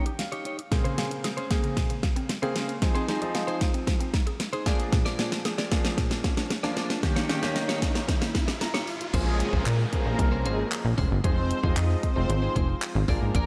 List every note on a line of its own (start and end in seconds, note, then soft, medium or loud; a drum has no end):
0.00 0.11 D#4 medium
0.00 0.18 G5 medium
0.06 0.18 G4 medium
0.06 muted clean electric guitar stroke medium
0.06 closed hi-hat medium
0.19 0.68 F5 medium
0.19 muted clean electric guitar stroke soft
0.19 snare medium
0.19 closed hi-hat medium
0.32 0.44 D#4 medium
0.32 0.44 G4 medium
0.32 0.45 C#5 medium
0.32 closed hi-hat soft
0.45 0.60 D#4 medium
0.45 0.58 G4 medium
0.45 0.57 C#5 medium
0.45 closed hi-hat medium
0.58 muted clean electric guitar stroke soft
0.58 closed hi-hat medium
0.71 0.84 A#2 medium
0.71 1.36 C#3 medium
0.71 1.36 A#3 medium
0.71 1.36 C4 medium
0.71 1.36 G#4 medium
0.71 muted clean electric guitar stroke soft
0.71 kick loud
0.71 snare medium
0.71 closed hi-hat medium
0.71 riser medium
0.84 0.97 C#3 medium
0.84 0.96 C#4 medium
0.84 0.97 G#4 medium
0.84 0.98 C5 medium
0.84 closed hi-hat medium
0.97 1.10 A#3 medium
0.97 1.12 C#4 medium
0.97 1.11 G#4 medium
0.97 1.10 C5 medium
0.97 snare medium
0.97 closed hi-hat medium
1.11 muted clean electric guitar stroke medium
1.11 closed hi-hat medium
1.24 1.36 G#4 medium
1.24 muted clean electric guitar stroke soft
1.24 snare medium
1.24 closed hi-hat loud
1.37 1.49 C#4 medium
1.37 1.50 G#4 medium
1.37 1.50 C5 medium
1.37 closed hi-hat soft
1.50 2.26 C#3 medium
1.50 2.26 A#3 medium
1.50 1.63 A#3 medium
1.50 2.26 C4 medium
1.50 2.26 G#4 medium
1.50 muted clean electric guitar stroke soft
1.50 kick medium
1.50 snare medium
1.50 closed hi-hat medium
1.63 1.76 C#3 medium
1.63 muted clean electric guitar stroke soft
1.63 closed hi-hat soft
1.77 1.89 A#2 medium
1.77 muted clean electric guitar stroke soft
1.77 kick loud
1.77 snare medium
1.77 closed hi-hat medium
1.90 2.02 C#3 medium
1.90 muted clean electric guitar stroke soft
1.90 closed hi-hat medium
2.03 2.15 A#3 medium
2.03 kick medium
2.03 snare medium
2.03 closed hi-hat medium
2.16 2.28 C4 medium
2.16 muted clean electric guitar stroke soft
2.16 closed hi-hat medium
2.29 muted clean electric guitar stroke soft
2.29 snare medium
2.29 closed hi-hat medium
2.42 2.75 C#3 medium
2.42 2.75 A#3 medium
2.42 2.55 C4 medium
2.42 2.75 C4 medium
2.42 2.54 C#4 medium
2.42 2.55 G#4 medium
2.42 2.75 G#4 medium
2.42 2.56 C5 medium
2.42 closed hi-hat soft
2.55 2.70 C#4 medium
2.55 2.68 G#4 medium
2.55 2.67 C5 medium
2.55 snare medium
2.55 closed hi-hat medium
2.69 muted clean electric guitar stroke soft
2.69 closed hi-hat medium
2.82 3.04 F3 medium
2.82 2.94 F3 loud
2.82 3.04 C4 medium
2.82 3.04 D#4 medium
2.82 3.04 G#4 loud
2.82 muted clean electric guitar stroke soft
2.82 kick loud
2.82 snare medium
2.82 closed hi-hat medium
2.95 3.07 C4 medium
2.95 3.07 D#4 medium
2.95 3.07 G#4 medium
2.95 3.08 C5 medium
2.95 closed hi-hat medium
3.08 3.19 F3 medium
3.08 3.19 C4 medium
3.08 3.23 D#4 medium
3.08 3.19 D#4 medium
3.08 3.20 D#4 medium
3.08 3.19 G#4 medium
3.08 3.21 G#4 medium
3.08 3.20 C5 medium
3.08 snare medium
3.08 closed hi-hat medium
3.21 4.08 F3 medium
3.21 4.08 C4 medium
3.21 4.08 D#4 medium
3.21 4.08 G#4 loud
3.21 muted clean electric guitar stroke medium
3.21 closed hi-hat medium
3.34 3.47 F5 medium
3.34 muted clean electric guitar stroke soft
3.34 snare loud
3.34 closed hi-hat medium
3.47 3.59 D#4 medium
3.47 3.60 G#4 medium
3.47 3.60 C5 medium
3.47 closed hi-hat soft
3.61 3.73 D#4 medium
3.61 kick medium
3.61 snare medium
3.61 closed hi-hat medium
3.74 3.86 C4 medium
3.74 muted clean electric guitar stroke soft
3.74 closed hi-hat soft
3.87 3.99 F3 medium
3.87 muted clean electric guitar stroke soft
3.87 kick loud
3.87 snare loud
3.87 closed hi-hat medium
4.00 4.12 C4 medium
4.00 muted clean electric guitar stroke soft
4.00 closed hi-hat medium
4.14 4.26 D#4 medium
4.14 kick medium
4.14 snare medium
4.14 closed hi-hat medium
4.27 4.39 G#4 medium
4.27 muted clean electric guitar stroke medium
4.27 closed hi-hat medium
4.40 muted clean electric guitar stroke soft
4.40 snare medium
4.40 closed hi-hat medium
4.53 4.65 D#4 medium
4.53 4.65 G#4 medium
4.53 4.67 C5 medium
4.53 closed hi-hat soft
4.66 5.52 F3 medium
4.66 5.52 A#3 medium
4.66 5.52 D4 medium
4.66 4.81 F4 medium
4.66 5.53 G#4 loud
4.66 4.79 G#4 medium
4.66 4.78 D5 medium
4.66 kick medium
4.66 snare medium
4.66 closed hi-hat medium
4.79 muted clean electric guitar stroke soft
4.79 closed hi-hat medium
4.92 5.05 A#2 loud
4.92 muted clean electric guitar stroke soft
4.92 kick loud
4.92 snare medium
4.92 closed hi-hat medium
5.05 5.18 F3 medium
5.05 5.17 F4 medium
5.05 5.18 G#4 medium
5.05 5.19 D5 medium
5.05 snare loud
5.05 closed hi-hat medium
5.19 5.31 A#3 medium
5.19 5.33 F4 medium
5.19 5.32 G#4 medium
5.19 5.31 D5 medium
5.19 snare loud
5.19 closed hi-hat medium
5.32 muted clean electric guitar stroke medium
5.32 snare loud
5.32 closed hi-hat medium
5.45 5.57 G#4 medium
5.45 muted clean electric guitar stroke soft
5.45 snare loud
5.45 closed hi-hat loud
5.58 5.70 F4 medium
5.58 5.71 G#4 medium
5.58 5.71 D5 medium
5.58 snare loud
5.58 closed hi-hat soft
5.71 6.47 F3 medium
5.71 6.47 A#3 medium
5.71 5.84 A#3 medium
5.71 6.47 D4 medium
5.71 6.47 G#4 medium
5.71 muted clean electric guitar stroke soft
5.71 kick medium
5.71 snare loud
5.71 closed hi-hat medium
5.84 5.97 F3 medium
5.84 muted clean electric guitar stroke medium
5.84 snare loud
5.84 closed hi-hat soft
5.98 6.10 A#2 medium
5.98 muted clean electric guitar stroke medium
5.98 kick loud
5.98 snare loud
5.98 closed hi-hat medium
6.11 6.23 F3 medium
6.11 muted clean electric guitar stroke soft
6.11 snare loud
6.11 closed hi-hat medium
6.24 6.36 A#3 medium
6.24 kick medium
6.24 snare loud
6.24 closed hi-hat medium
6.37 6.49 D4 medium
6.37 muted clean electric guitar stroke soft
6.37 snare loud
6.37 closed hi-hat medium
6.50 muted clean electric guitar stroke soft
6.50 snare loud
6.50 closed hi-hat medium
6.63 6.96 F3 medium
6.63 6.96 A#3 medium
6.63 6.76 D4 medium
6.63 6.96 D4 medium
6.63 6.96 F4 loud
6.63 6.75 F4 medium
6.63 6.76 G#4 medium
6.63 6.77 D5 medium
6.63 snare loud
6.63 closed hi-hat medium
6.76 6.91 F4 medium
6.76 6.90 G#4 medium
6.76 6.89 D5 medium
6.76 snare loud
6.76 closed hi-hat medium
6.90 muted clean electric guitar stroke medium
6.90 snare loud
6.90 closed hi-hat medium
7.03 7.25 D#3 medium
7.03 7.15 D#3 loud
7.03 7.25 A#3 medium
7.03 7.25 C#4 medium
7.03 7.25 G4 loud
7.03 muted clean electric guitar stroke soft
7.03 kick loud
7.03 snare loud
7.03 closed hi-hat loud
7.16 7.28 A#3 medium
7.16 7.28 D#4 medium
7.16 7.29 G4 medium
7.16 7.29 C#5 medium
7.16 snare loud
7.16 closed hi-hat medium
7.29 7.40 D#3 medium
7.29 7.40 A#3 medium
7.29 7.40 C#4 medium
7.29 7.41 C#4 medium
7.29 7.44 D#4 medium
7.29 7.40 G4 loud
7.29 7.42 G4 medium
7.29 7.41 C#5 medium
7.29 snare loud
7.29 closed hi-hat medium
7.42 8.29 D#3 medium
7.42 8.29 A#3 medium
7.42 8.29 C#4 medium
7.42 8.29 G4 loud
7.42 muted clean electric guitar stroke soft
7.42 snare loud
7.42 closed hi-hat medium
7.56 7.68 D#5 medium
7.56 muted clean electric guitar stroke soft
7.56 snare loud
7.56 closed hi-hat loud
7.69 7.81 D#4 medium
7.69 7.81 G4 medium
7.69 7.82 C#5 medium
7.69 snare loud
7.69 closed hi-hat soft
7.82 7.94 C#4 medium
7.82 muted clean electric guitar stroke soft
7.82 kick medium
7.82 snare loud
7.82 closed hi-hat medium
7.95 8.07 A#3 medium
7.95 muted clean electric guitar stroke soft
7.95 snare loud
7.95 closed hi-hat soft
8.08 8.20 D#3 medium
8.08 muted clean electric guitar stroke soft
8.08 kick loud
8.08 snare loud
8.08 closed hi-hat loud
8.21 8.34 A#3 medium
8.21 muted clean electric guitar stroke soft
8.21 snare loud
8.21 closed hi-hat medium
8.35 8.47 C#4 medium
8.35 kick medium
8.35 snare loud
8.35 closed hi-hat medium
8.48 8.60 G4 medium
8.48 muted clean electric guitar stroke medium
8.48 snare loud
8.48 closed hi-hat medium
8.61 9.10 A#5 medium
8.61 muted clean electric guitar stroke soft
8.61 snare loud
8.61 closed hi-hat medium
8.74 8.86 D#4 medium
8.74 8.86 G4 medium
8.74 8.87 G4 medium
8.74 8.87 C#5 medium
8.74 snare loud
8.74 closed hi-hat medium
8.87 muted clean electric guitar stroke soft
8.87 open hi-hat medium
9.00 muted clean electric guitar stroke soft
9.00 closed hi-hat medium
9.13 9.43 A#1 loud
9.13 9.78 F3 medium
9.13 9.38 G#3 medium
9.13 9.78 A#3 medium
9.13 9.78 C4 medium
9.13 9.32 C#4 medium
9.13 9.78 C#4 medium
9.13 9.37 G#4 loud
9.13 9.78 G#4 medium
9.13 9.26 G#4 medium
9.13 9.25 C5 loud
9.13 kick loud
9.13 closed hi-hat medium
9.13 crash loud
9.13 downlifter medium
9.27 muted clean electric guitar stroke medium
9.40 muted clean electric guitar stroke soft
9.40 closed hi-hat medium
9.53 9.63 A#1 loud
9.53 9.65 A#3 medium
9.53 9.65 C#4 medium
9.53 9.66 G#4 medium
9.53 9.65 A#4 medium
9.53 9.66 C5 medium
9.53 kick medium
9.66 9.86 A#2 loud
9.66 muted clean electric guitar stroke soft
9.66 clap loud
9.66 closed hi-hat loud
9.79 muted clean electric guitar stroke soft
9.92 10.03 F3 medium
9.92 10.03 A#3 medium
9.92 10.30 A#3 medium
9.92 10.04 C4 medium
9.92 10.04 C#4 medium
9.92 10.04 G#4 medium
9.92 10.30 A#4 medium
9.92 kick medium
9.92 closed hi-hat medium
10.06 10.16 A#1 medium
10.06 10.92 F3 medium
10.06 10.92 A#3 medium
10.06 10.92 C4 medium
10.06 10.92 C#4 medium
10.06 10.92 G#4 medium
10.06 muted clean electric guitar stroke soft
10.19 10.47 C2 medium
10.19 muted clean electric guitar stroke soft
10.19 kick loud
10.19 closed hi-hat loud
10.32 10.44 C#4 medium
10.32 10.45 G#4 medium
10.32 10.45 C5 medium
10.45 10.65 G#1 medium
10.45 10.58 G#3 medium
10.45 10.64 C#4 medium
10.45 10.57 G#4 medium
10.45 10.58 G#4 loud
10.45 10.57 C5 loud
10.45 closed hi-hat medium
10.58 muted clean electric guitar stroke soft
10.72 clap loud
10.72 closed hi-hat medium
10.85 10.95 A#1 loud
10.85 muted clean electric guitar stroke soft
10.98 11.08 F1 loud
10.98 11.16 C#4 medium
10.98 11.11 G#4 loud
10.98 11.10 C5 loud
10.98 kick loud
10.98 open hi-hat medium
11.11 11.21 G1 loud
11.11 muted clean electric guitar stroke soft
11.24 11.53 F1 loud
11.24 11.57 F3 medium
11.24 11.57 G#3 medium
11.24 11.57 C4 medium
11.24 11.48 C4 medium
11.24 11.43 D#4 medium
11.24 11.57 D#4 medium
11.24 11.57 G#4 medium
11.24 11.37 G#4 medium
11.24 11.48 C5 loud
11.24 11.36 C5 loud
11.24 kick loud
11.24 closed hi-hat medium
11.37 muted clean electric guitar stroke soft
11.50 muted clean electric guitar stroke soft
11.50 closed hi-hat medium
11.63 11.73 F1 medium
11.63 12.07 F3 medium
11.63 12.07 G#3 medium
11.63 12.07 C4 medium
11.63 12.07 D#4 medium
11.63 11.75 D#4 medium
11.63 11.76 D#4 medium
11.63 12.07 F4 medium
11.63 11.76 G#4 medium
11.63 11.76 C5 medium
11.63 11.76 D#5 medium
11.63 kick loud
11.77 11.96 F2 loud
11.77 muted clean electric guitar stroke soft
11.77 clap loud
11.77 closed hi-hat loud
11.90 muted clean electric guitar stroke soft
12.03 12.53 C4 medium
12.03 12.53 C5 medium
12.03 kick medium
12.03 closed hi-hat medium
12.16 12.26 F1 medium
12.16 13.02 F3 medium
12.16 13.02 G#3 medium
12.16 13.02 C4 medium
12.16 13.03 D#4 medium
12.16 13.03 F4 medium
12.16 muted clean electric guitar stroke medium
12.29 12.49 G#1 loud
12.29 muted clean electric guitar stroke soft
12.29 closed hi-hat loud
12.42 12.54 D#4 medium
12.42 12.55 G#4 medium
12.42 12.56 C5 medium
12.55 12.75 F1 medium
12.55 12.74 D#4 medium
12.55 12.68 G#4 loud
12.55 12.68 C5 loud
12.55 kick medium
12.55 closed hi-hat medium
12.69 muted clean electric guitar stroke soft
12.82 clap loud
12.82 closed hi-hat medium
12.95 13.05 G#1 loud
12.95 muted clean electric guitar stroke soft
13.08 13.18 A#1 loud
13.08 13.46 F3 medium
13.08 13.46 G#3 medium
13.08 13.46 A#3 medium
13.08 13.21 A#3 medium
13.08 13.46 D4 medium
13.08 13.27 F4 medium
13.08 13.46 G#4 medium
13.08 13.21 G#4 medium
13.08 13.20 A#4 medium
13.08 13.20 D5 medium
13.08 kick medium
13.08 open hi-hat medium
13.21 13.31 G#1 medium
13.21 muted clean electric guitar stroke soft
13.34 13.46 A#1 loud
13.34 13.46 A#3 medium
13.34 13.46 F4 medium
13.34 13.46 G#4 medium
13.34 13.46 A#4 loud
13.34 13.46 D5 loud
13.34 kick loud
13.34 closed hi-hat medium